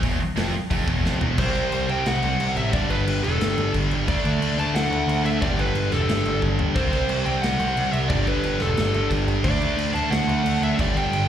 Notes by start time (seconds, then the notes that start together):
0.03 E1 E2, kick, open hi-hat
0.20 muted picked electric bass stroke, muted distorted electric guitar stroke
0.36 F1 F2, snare, open hi-hat
0.71 F1 F2, kick, open hi-hat
0.87 E1 E2, kick
1.04 F1 F2, snare
1.21 E1 E2, floor tom
1.38 C2 C3 G3 C5, kick, crash
1.42 C4
1.55 C2, crash
1.72 C2, crash
1.88 C2 C3 G3 C4 G5, crash
2.06 C2 F#5, snare, crash
2.23 C2, crash
2.40 C2, crash
2.56 A1 E5, crash
2.72 G1 G2 D3 G3 D5, kick, crash
2.89 G1 B4, crash
3.07 G1, crash
3.23 E1 D3 G3 A4, crash
3.27 G2
3.40 G1, snare, crash
3.57 G1, crash
3.74 G1, kick, crash
3.91 G1, crash
4.07 D2 D3 A3 D4 D5, kick, crash
4.25 D2, crash
4.41 D2, crash
4.58 D2 A3 D4 A5, crash
4.62 D3
4.74 D2 F#5, snare, crash
4.90 D2, crash
5.08 D2, crash
5.24 D2 E5, crash
5.42 G1 G2 D3 G3 D5, kick, crash
5.58 G1 B4, crash
5.75 G1, crash
5.91 E1 G2 D3 G3 A4, snare, crash
6.08 G1, snare, crash
6.25 G1, crash
6.42 G1, kick, high tom
6.59 G1, floor tom
6.74 C2 C3 G3 C4 C5, kick, crash
6.91 C2, snare, crash
7.09 C2, crash
7.25 C2 C3 G3 C4 G5, crash
7.42 C2 F#5, snare, crash
7.59 C2, crash
7.77 C2, crash
7.92 C2 E5, crash
8.09 G1 G2 D3 G3 D5, kick, crash
8.26 G1 B4, crash
8.44 G1, crash
8.59 E1 G2 D3 G3 A4, snare, crash
8.77 G1, snare, crash
8.94 G1, crash
9.11 G1, kick, crash
9.27 G1, crash
9.44 D2 D3 A3 D4 D5, kick, crash
9.61 D2, crash
9.77 D2, crash
9.94 D2 D3 A3 D4 A5, crash
10.10 D2 F#5, snare, crash
10.27 D2, crash
10.44 D2, crash
10.61 D2 E5, crash
10.78 G1 G2 D3 G3 D5, kick, crash
10.96 G1 G5, crash
11.12 G1, crash